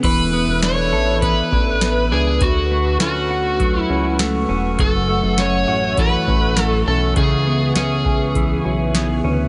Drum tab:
CC |x-------|--------|--------|--------|
HH |x-x-x-x-|x-x-x-x-|x-x-x-x-|x-x-x-x-|
SD |--o---o-|--o---o-|--o---o-|--o---o-|
BD |o---oo--|o---o---|o---oo--|o--oo---|